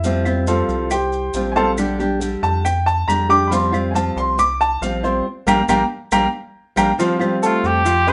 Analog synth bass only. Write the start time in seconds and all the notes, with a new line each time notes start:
Already playing: F2
0.68 C2
1.34 A#1
2.43 F2
3.08 F2
4.16 C2
4.81 A#1
5.47 A#1
5.68 A#1
6.12 A#1
6.77 A#1
7.64 F2